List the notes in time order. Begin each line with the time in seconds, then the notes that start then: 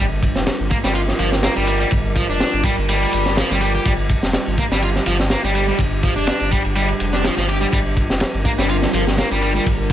0.00 G1 G3 D4 F4 A#4
0.12 closed hi-hat
0.23 kick, closed hi-hat, ride
0.36 F1, snare, closed hi-hat
0.47 snare, closed hi-hat, ride
0.60 G1, closed hi-hat
0.71 A#3, kick, closed hi-hat, ride
0.84 G1 G3, snare, closed hi-hat
0.94 F4, closed hi-hat, ride
1.08 snare, closed hi-hat
1.19 G1 F3, closed hi-hat, ride
1.32 snare, closed hi-hat
1.43 A#3, snare, closed hi-hat, ride
1.56 G1 G3, closed hi-hat
1.67 G3, closed hi-hat, ride
1.80 G3, closed hi-hat
1.91 G1, kick, closed hi-hat, ride
2.06 closed hi-hat
2.16 F3, kick, closed hi-hat, ride
2.29 F1 D4, closed hi-hat
2.40 snare, closed hi-hat, ride
2.53 G1, closed hi-hat, ride
2.64 G3, kick, closed hi-hat, ride
2.77 G1, closed hi-hat, ride
2.89 G3, closed hi-hat, ride
3.02 closed hi-hat, ride
3.13 G1, closed hi-hat, ride
3.26 snare, closed hi-hat
3.37 F3, snare, closed hi-hat, ride
3.51 G1 G3, snare, closed hi-hat
3.61 G3, closed hi-hat, ride
3.75 G4, closed hi-hat
3.85 G1 G3 G4, kick, closed hi-hat, ride
3.99 closed hi-hat
4.09 kick, closed hi-hat, ride
4.23 F1, snare, closed hi-hat
4.33 snare, closed hi-hat, ride
4.47 G1, closed hi-hat
4.58 A#3, kick, closed hi-hat, ride
4.71 G1 G3, snare, closed hi-hat
4.82 F4, closed hi-hat, ride
4.96 snare, closed hi-hat
5.06 G1 F3, closed hi-hat, ride
5.20 snare, closed hi-hat
5.30 A#3, snare, closed hi-hat, ride
5.44 G1 G3, closed hi-hat
5.55 G3, closed hi-hat, ride
5.68 G3, closed hi-hat
5.79 G1, kick, closed hi-hat, ride
5.92 closed hi-hat
6.03 F3, kick, closed hi-hat, ride
6.16 F1 D4, closed hi-hat
6.27 snare, closed hi-hat, ride
6.40 G1, closed hi-hat, ride
6.51 G3, kick, closed hi-hat, ride
6.65 G1, closed hi-hat, ride
6.75 G3, closed hi-hat, ride
6.89 closed hi-hat, ride
7.00 F1, closed hi-hat, ride
7.13 D4, snare, closed hi-hat
7.24 F3, snare, closed hi-hat, ride
7.37 G1 F3, snare, closed hi-hat
7.48 G4, closed hi-hat, ride
7.61 G3, closed hi-hat
7.72 G1 G3 A#4, kick, closed hi-hat, ride
7.86 closed hi-hat
7.97 kick, closed hi-hat, ride
8.10 F1, snare, closed hi-hat
8.20 snare, closed hi-hat, ride
8.34 G1, closed hi-hat
8.45 A#3, kick, closed hi-hat, ride
8.58 G1 G3, snare, closed hi-hat
8.69 F4, closed hi-hat, ride
8.82 snare, closed hi-hat
8.93 G1 F3, closed hi-hat, ride
9.07 snare, closed hi-hat
9.18 A#3, snare, closed hi-hat, ride
9.31 G1 G3, closed hi-hat
9.42 G3, closed hi-hat, ride
9.55 G3, closed hi-hat
9.66 G1, kick, closed hi-hat, ride
9.80 closed hi-hat